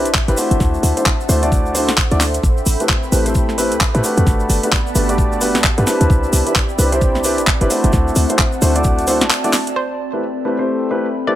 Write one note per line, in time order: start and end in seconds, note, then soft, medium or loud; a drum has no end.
0.00 1.34 C4 medium
0.00 0.60 G4 medium
0.00 0.57 D5 medium
0.00 0.58 E5 medium
0.00 1.34 E5 medium
0.00 0.58 G5 medium
0.00 0.57 B5 medium
0.00 0.60 B5 medium
0.05 0.20 G1 medium
0.05 closed hi-hat medium
0.05 shaker soft
0.14 kick loud
0.14 clap loud
0.14 shaker soft
0.28 0.35 G1 medium
0.28 0.36 C4 medium
0.28 0.36 D4 medium
0.28 0.36 E4 medium
0.28 0.36 G4 medium
0.28 0.36 B4 loud
0.28 closed hi-hat soft
0.28 shaker soft
0.37 0.94 A3 medium
0.37 0.94 D4 medium
0.37 0.94 E4 medium
0.37 0.94 F#4 medium
0.37 0.94 C5 loud
0.37 open hi-hat medium
0.37 shaker medium
0.51 0.57 G1 loud
0.51 closed hi-hat medium
0.51 shaker soft
0.60 0.78 D2 loud
0.60 3.18 D4 medium
0.60 4.23 C5 medium
0.60 4.23 E5 medium
0.60 2.42 F#5 medium
0.60 2.42 A5 medium
0.60 kick loud
0.60 snare soft
0.60 shaker soft
0.74 shaker soft
0.83 0.93 D2 loud
0.83 open hi-hat loud
0.83 shaker medium
0.88 5.01 A4 medium
0.97 1.06 A3 medium
0.97 1.06 D4 medium
0.97 1.06 E4 medium
0.97 1.06 F#4 medium
0.97 1.06 C5 medium
0.97 closed hi-hat medium
0.97 shaker soft
1.06 kick loud
1.06 clap loud
1.06 shaker soft
1.20 shaker soft
1.26 1.90 D2 loud
1.26 1.41 A3 medium
1.26 1.41 D4 medium
1.26 1.41 E4 medium
1.26 1.41 F#4 medium
1.26 1.41 C5 medium
1.26 2.43 F#5 medium
1.26 open hi-hat medium
1.26 shaker medium
1.43 1.73 A3 medium
1.43 1.73 D4 medium
1.43 1.73 E4 medium
1.43 1.73 F#4 medium
1.43 1.73 D5 medium
1.43 2.43 C6 medium
1.43 closed hi-hat medium
1.43 shaker soft
1.52 kick loud
1.52 shaker medium
1.66 shaker soft
1.75 1.89 A3 medium
1.75 1.89 D4 medium
1.75 1.89 E4 medium
1.75 1.89 F#4 medium
1.75 1.89 C5 loud
1.75 open hi-hat loud
1.75 shaker loud
1.88 2.03 A1 medium
1.88 snare medium
1.88 closed hi-hat medium
1.88 shaker soft
1.98 kick loud
1.98 clap loud
1.98 shaker medium
2.11 2.39 D2 medium
2.11 2.21 A3 medium
2.11 2.21 D4 medium
2.11 2.21 E4 medium
2.11 2.21 F#4 medium
2.11 2.21 D5 loud
2.11 closed hi-hat soft
2.11 shaker soft
2.20 clap medium
2.20 snare soft
2.20 open hi-hat medium
2.20 shaker medium
2.34 closed hi-hat medium
2.34 shaker soft
2.43 2.61 A1 loud
2.43 4.27 C4 medium
2.43 4.25 G5 medium
2.43 4.25 B5 medium
2.43 kick loud
2.43 shaker medium
2.57 shaker soft
2.66 2.76 A1 loud
2.66 open hi-hat loud
2.66 shaker loud
2.73 5.01 B5 medium
2.80 2.90 A3 medium
2.80 2.90 C4 medium
2.80 2.90 E4 medium
2.80 2.90 G4 medium
2.80 2.90 B4 medium
2.80 closed hi-hat medium
2.80 shaker soft
2.88 4.27 G5 medium
2.88 kick loud
2.88 clap loud
2.88 shaker soft
3.03 shaker soft
3.12 3.73 A1 loud
3.12 3.24 A3 medium
3.12 3.24 C4 medium
3.12 3.24 E4 medium
3.12 3.24 G4 medium
3.12 3.24 B4 medium
3.12 open hi-hat medium
3.12 shaker medium
3.26 3.56 A3 medium
3.26 3.56 C4 medium
3.26 3.56 E4 medium
3.26 3.56 G4 medium
3.26 3.56 C5 medium
3.26 closed hi-hat medium
3.26 shaker soft
3.35 kick loud
3.35 shaker medium
3.49 snare soft
3.49 shaker soft
3.58 3.72 A3 medium
3.58 3.72 C4 medium
3.58 3.72 E4 medium
3.58 3.72 G4 medium
3.58 3.72 B4 loud
3.58 open hi-hat loud
3.58 shaker medium
3.72 3.86 E2 medium
3.72 closed hi-hat medium
3.72 shaker soft
3.80 kick loud
3.80 clap loud
3.80 shaker medium
3.95 4.01 A2 medium
3.95 4.02 A3 loud
3.95 4.02 C4 medium
3.95 4.02 E4 medium
3.95 4.02 G4 medium
3.95 4.02 B4 loud
3.95 closed hi-hat medium
3.95 shaker soft
4.04 4.60 A3 medium
4.04 4.60 D4 medium
4.04 4.60 F#4 medium
4.04 4.60 G4 medium
4.04 4.60 B4 loud
4.04 open hi-hat medium
4.04 shaker medium
4.17 4.24 E2 loud
4.17 closed hi-hat medium
4.17 shaker soft
4.26 4.44 G1 loud
4.26 6.10 B3 medium
4.26 6.08 D5 medium
4.26 6.08 F#5 medium
4.26 6.08 A5 medium
4.26 6.08 B5 medium
4.26 kick loud
4.26 snare soft
4.26 shaker medium
4.40 shaker soft
4.49 4.59 G1 loud
4.49 7.93 G4 medium
4.49 open hi-hat loud
4.49 shaker medium
4.63 4.73 A3 medium
4.63 4.73 D4 medium
4.63 4.73 F#4 medium
4.63 4.73 G4 medium
4.63 4.73 B4 medium
4.63 closed hi-hat medium
4.63 shaker soft
4.72 kick loud
4.72 clap loud
4.72 shaker medium
4.87 shaker soft
4.95 5.56 G1 loud
4.95 5.07 A3 medium
4.95 5.07 D4 medium
4.95 5.07 F#4 medium
4.95 5.07 G4 medium
4.95 5.07 B4 medium
4.95 open hi-hat medium
4.95 shaker medium
5.09 5.39 A3 medium
5.09 5.39 D4 medium
5.09 5.39 F#4 medium
5.09 5.39 G4 medium
5.09 5.39 D5 medium
5.09 6.84 A5 medium
5.09 closed hi-hat medium
5.09 shaker soft
5.18 kick loud
5.18 shaker soft
5.32 shaker soft
5.41 5.55 A3 medium
5.41 5.55 D4 medium
5.41 5.55 F#4 medium
5.41 5.55 G4 medium
5.41 5.55 B4 loud
5.41 open hi-hat loud
5.41 shaker medium
5.55 5.70 D2 medium
5.55 snare medium
5.55 closed hi-hat medium
5.55 shaker soft
5.64 kick loud
5.64 clap loud
5.64 shaker soft
5.78 5.84 G2 medium
5.78 5.86 A3 loud
5.78 5.85 D4 medium
5.78 5.86 F#4 medium
5.78 5.85 G4 medium
5.78 5.85 B4 loud
5.78 closed hi-hat medium
5.78 shaker soft
5.87 6.43 C4 medium
5.87 6.43 D4 medium
5.87 6.43 E4 medium
5.87 6.43 G4 medium
5.87 6.43 B4 loud
5.87 snare soft
5.87 open hi-hat medium
5.87 shaker medium
6.01 6.07 D2 loud
6.01 closed hi-hat medium
6.01 shaker soft
6.10 6.27 C2 loud
6.10 11.35 C4 medium
6.10 7.91 D5 medium
6.10 7.91 E5 medium
6.10 7.91 G5 medium
6.10 7.91 B5 medium
6.10 kick loud
6.10 shaker soft
6.23 shaker soft
6.33 6.42 C2 medium
6.33 open hi-hat loud
6.33 shaker medium
6.46 6.56 C4 medium
6.46 6.56 D4 medium
6.46 6.56 E4 medium
6.46 6.56 G4 medium
6.46 6.56 B4 medium
6.46 closed hi-hat medium
6.46 shaker soft
6.56 kick loud
6.56 clap loud
6.56 shaker soft
6.69 shaker soft
6.78 7.40 C2 loud
6.78 6.90 C4 medium
6.78 6.90 D4 medium
6.78 6.90 E4 medium
6.78 6.90 G4 medium
6.78 6.90 B4 loud
6.78 open hi-hat medium
6.78 shaker medium
6.92 7.22 C4 medium
6.92 7.22 D4 medium
6.92 7.22 E4 medium
6.92 7.22 G4 medium
6.92 7.22 C5 medium
6.92 8.67 E5 medium
6.92 8.67 B5 medium
6.92 closed hi-hat medium
6.92 shaker soft
7.01 kick loud
7.01 shaker soft
7.15 snare soft
7.15 shaker soft
7.24 7.38 C4 medium
7.24 7.38 D4 medium
7.24 7.38 E4 medium
7.24 7.38 G4 medium
7.24 7.38 B4 loud
7.24 open hi-hat loud
7.24 shaker medium
7.38 7.53 G1 medium
7.38 closed hi-hat medium
7.38 shaker soft
7.47 kick loud
7.47 clap loud
7.47 shaker medium
7.61 7.67 G1 medium
7.61 7.69 C4 medium
7.61 7.69 D4 medium
7.61 7.69 E4 medium
7.61 7.69 G4 medium
7.61 7.69 B4 loud
7.61 closed hi-hat medium
7.61 shaker soft
7.70 8.26 A3 medium
7.70 8.26 D4 medium
7.70 8.26 E4 medium
7.70 8.26 F#4 medium
7.70 8.26 C5 loud
7.70 open hi-hat medium
7.70 shaker medium
7.84 7.90 G1 loud
7.84 closed hi-hat medium
7.84 shaker soft
7.93 8.11 D2 loud
7.93 9.74 C5 medium
7.93 9.74 E5 medium
7.93 9.74 F#5 medium
7.93 9.74 A5 medium
7.93 kick loud
7.93 snare soft
7.93 shaker medium
8.08 shaker soft
8.15 8.26 D2 loud
8.15 10.50 A5 medium
8.15 open hi-hat loud
8.15 shaker medium
8.29 8.39 A3 medium
8.29 8.39 D4 medium
8.29 8.39 E4 medium
8.29 8.39 F#4 medium
8.29 8.39 C5 medium
8.29 closed hi-hat medium
8.29 shaker soft
8.37 9.76 F#4 medium
8.37 kick loud
8.37 clap loud
8.37 shaker soft
8.52 10.50 D5 medium
8.52 shaker soft
8.62 9.23 D2 loud
8.62 8.73 A3 medium
8.62 8.73 D4 medium
8.62 8.73 E4 medium
8.62 8.73 F#4 medium
8.62 8.73 C5 loud
8.62 open hi-hat medium
8.62 shaker medium
8.75 9.05 A3 medium
8.75 9.05 D4 medium
8.75 9.05 E4 medium
8.75 9.05 F#4 medium
8.75 9.05 D5 medium
8.75 closed hi-hat medium
8.75 shaker soft
8.84 kick loud
8.84 shaker soft
8.99 closed hi-hat soft
8.99 shaker soft
9.07 9.22 A3 medium
9.07 9.22 D4 medium
9.07 9.22 E4 medium
9.07 9.22 F#4 medium
9.07 9.22 C5 loud
9.07 open hi-hat loud
9.07 shaker medium
9.21 9.30 A1 medium
9.21 snare medium
9.21 closed hi-hat medium
9.21 shaker soft
9.30 clap loud
9.30 shaker medium
9.44 9.54 A3 medium
9.44 9.54 D4 medium
9.44 9.54 E4 medium
9.44 9.54 F#4 medium
9.44 9.54 D5 loud
9.44 closed hi-hat medium
9.44 shaker soft
9.53 clap medium
9.53 snare medium
9.53 open hi-hat medium
9.53 shaker medium
9.67 closed hi-hat medium
9.67 shaker soft
9.76 11.35 A3 medium
9.76 9.96 C5 loud
9.76 11.35 C5 medium
9.76 11.35 E5 medium
9.76 11.35 G5 medium
9.76 11.35 B5 medium
10.06 11.35 A4 medium
10.13 10.22 A3 medium
10.13 10.22 C4 medium
10.13 10.23 E4 medium
10.13 10.23 G4 medium
10.13 10.23 B4 medium
10.45 10.57 A3 medium
10.45 10.57 C4 medium
10.45 10.57 E4 medium
10.45 10.57 G4 medium
10.45 10.57 B4 medium
10.49 11.35 G5 medium
10.59 10.89 A3 medium
10.59 10.89 C4 medium
10.59 10.89 E4 medium
10.59 10.89 G4 medium
10.59 10.89 C5 medium
10.59 11.35 B5 medium
10.91 11.05 A3 medium
10.91 11.05 C4 medium
10.91 11.05 E4 medium
10.91 11.05 G4 medium
10.91 11.05 B4 loud
11.27 11.35 A3 medium
11.27 11.35 C4 medium
11.27 11.35 E4 medium
11.27 11.35 G4 medium
11.27 11.35 B4 loud
11.27 11.35 D5 medium